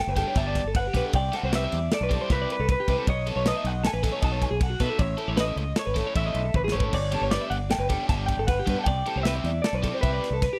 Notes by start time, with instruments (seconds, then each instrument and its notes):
0.00 clean electric guitar G5
0.07 fingered electric bass F#1, clean electric guitar B4
0.16 overdriven electric guitar G3 B3 D4 G4, clean electric guitar A4 G5, kick, snare, ride
0.28 clean electric guitar C#5
0.35 fingered electric bass G1, overdriven electric guitar G3 B3 D4 G4, clean electric guitar E5 A5, kick, snare, ride
0.47 clean electric guitar D5
0.55 kick, snare, ride
0.64 fingered electric bass G1, clean electric guitar A4
0.75 clean electric guitar B4 F#5, kick, ride
0.87 clean electric guitar G4
0.93 fingered electric bass B1, overdriven electric guitar G3 B3 D4 G4, clean electric guitar B4, kick, snare, ride
1.06 clean electric guitar A4
1.13 fingered electric bass C2, clean electric guitar D5 G5, kick, ride
1.32 overdriven electric guitar G3 C4 E4 G4, clean electric guitar A4 F#5, snare, ride
1.43 fingered electric bass C2, clean electric guitar C5
1.51 overdriven electric guitar G3 C4 E4 G4, clean electric guitar B4, snare, ride
1.55 clean electric guitar E5
1.64 clean electric guitar E5
1.72 fingered electric bass E2, clean electric guitar D5, snare, ride
1.91 clean electric guitar A4 D5, snare, ride
2.01 fingered electric bass B1, clean electric guitar B4
2.10 overdriven electric guitar G3 C4 E4 G4, clean electric guitar A4, kick, ride
2.21 clean electric guitar C5
2.30 fingered electric bass C2, overdriven electric guitar G3 C4 E4 G4, clean electric guitar B4 E5, kick, snare, ride
2.42 clean electric guitar D5
2.50 clean electric guitar B4, ride
2.59 fingered electric bass C2, clean electric guitar A4
2.69 clean electric guitar B4, kick, ride
2.80 clean electric guitar G4
2.88 fingered electric bass C2, overdriven electric guitar G3 C4 E4 G4, clean electric guitar B4, kick, ride
2.98 clean electric guitar A4
3.07 fingered electric bass B1, clean electric guitar C#5 D#5, kick, ride
3.27 overdriven electric guitar F#3 B3 D#4 A4, clean electric guitar A4, ride
3.36 fingered electric bass B1, clean electric guitar C#5
3.46 overdriven electric guitar F#3 B3 D#4 A4, clean electric guitar B4 D#5, snare, ride
3.56 clean electric guitar E5
3.64 fingered electric bass B1, clean electric guitar D#5 F#5, ride
3.84 clean electric guitar A4 G#5, snare, ride
3.93 fingered electric bass A1, clean electric guitar B4
4.03 overdriven electric guitar F#3 B3 D#4 A4, clean electric guitar A4, kick, snare, ride
4.12 clean electric guitar C#5
4.22 fingered electric bass B1, overdriven electric guitar F#3 B3 D#4 A4, clean electric guitar D#5 A5, kick, ride
4.32 clean electric guitar C#5
4.42 clean electric guitar G#5, kick, ride
4.51 fingered electric bass B1, clean electric guitar G#4
4.60 clean electric guitar A4 F#5, kick, ride
4.70 clean electric guitar F#4
4.80 fingered electric bass B2, overdriven electric guitar F#3 B3 D#4 A4, clean electric guitar B4 E5, kick, snare, ride
4.90 clean electric guitar A4
4.99 fingered electric bass A1, clean electric guitar C#5, kick, ride
5.17 overdriven electric guitar A3 C#4 E4 A4, clean electric guitar A4, ride
5.28 fingered electric bass A1, clean electric guitar C#5
5.36 overdriven electric guitar A3 C#4 E4 A4, clean electric guitar B4, snare, ride
5.40 clean electric guitar D#5
5.48 clean electric guitar E5
5.56 fingered electric bass C#2, clean electric guitar D#5, ride
5.76 clean electric guitar A4 C#5, snare, ride
5.86 fingered electric bass G#1, clean electric guitar B4
5.95 overdriven electric guitar A3 C#4 E4 A4, clean electric guitar A4, kick, snare, ride
6.07 clean electric guitar C#5
6.15 fingered electric bass A1, overdriven electric guitar A3 C#4 E4 A4, clean electric guitar E5, kick, ride
6.26 clean electric guitar D#5
6.34 fingered electric bass B1, ride
6.45 clean electric guitar A4
6.54 fingered electric bass A1, clean electric guitar B4, kick, high tom
6.64 clean electric guitar G#4, snare
6.72 fingered electric bass G#1, overdriven electric guitar A3 C#4 E4 A4, clean electric guitar B4 C#5
6.80 clean electric guitar A4, kick
6.93 fingered electric bass G1, clean electric guitar D5, kick, crash
7.12 overdriven electric guitar G3 B3 D4 G4, clean electric guitar A4, ride
7.21 fingered electric bass G1, clean electric guitar C#5
7.31 overdriven electric guitar G3 B3 D4 G4, clean electric guitar B4 D5, snare, ride
7.41 clean electric guitar E5
7.50 fingered electric bass G1, clean electric guitar D5 F#5, ride
7.70 clean electric guitar A4 G5, snare, ride
7.78 fingered electric bass F#1, clean electric guitar B4
7.89 overdriven electric guitar G3 B3 D4 G4, clean electric guitar A4, kick, ride
8.00 clean electric guitar C#5
8.09 fingered electric bass G1, overdriven electric guitar G3 B3 D4 G4, clean electric guitar E5 A5, kick, snare, ride
8.19 clean electric guitar D5
8.26 clean electric guitar G5, kick, ride
8.37 fingered electric bass G1, clean electric guitar A4
8.47 clean electric guitar B4 F#5, kick, snare, ride
8.59 clean electric guitar G4
8.66 fingered electric bass G2, overdriven electric guitar G3 B3 D4 G4, clean electric guitar B4, kick, ride
8.79 clean electric guitar A4
8.84 fingered electric bass C2, clean electric guitar D5 G5, kick, ride
9.06 overdriven electric guitar G3 C4 E4 G4, clean electric guitar A4, ride
9.16 fingered electric bass C2, clean electric guitar C5
9.23 overdriven electric guitar G3 C4 E4 G4, clean electric guitar B4 E5, snare, ride
9.36 clean electric guitar E5
9.44 fingered electric bass E2, clean electric guitar D5, snare, ride
9.62 clean electric guitar A4 D5, snare, ride
9.73 fingered electric bass B1, clean electric guitar B4
9.83 overdriven electric guitar G3 C4 E4 G4, clean electric guitar A4, kick, ride
9.94 clean electric guitar C5
10.01 fingered electric bass C2, overdriven electric guitar G3 C4 E4 G4, clean electric guitar B4 E5, kick, ride
10.13 clean electric guitar D5
10.24 snare, ride
10.30 fingered electric bass C2, clean electric guitar A4
10.42 clean electric guitar B4, kick, snare, ride
10.53 clean electric guitar G4